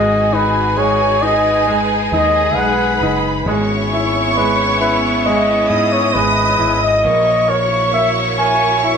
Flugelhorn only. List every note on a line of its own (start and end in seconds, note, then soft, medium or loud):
0.00 0.35 D#5 loud
0.34 0.80 B4 medium
0.78 1.24 C#5 medium
1.22 1.85 D#5 loud
2.13 2.58 D#5 loud
2.57 3.24 F#5 loud
4.36 4.77 B4 medium
4.81 4.97 B4 medium
5.26 5.94 D#5 medium
5.92 6.16 C#5 medium
6.14 6.81 B4 loud
6.83 7.51 D#5 loud
7.50 7.93 C#5 medium
7.94 8.10 E5 loud
8.39 8.97 G#5 loud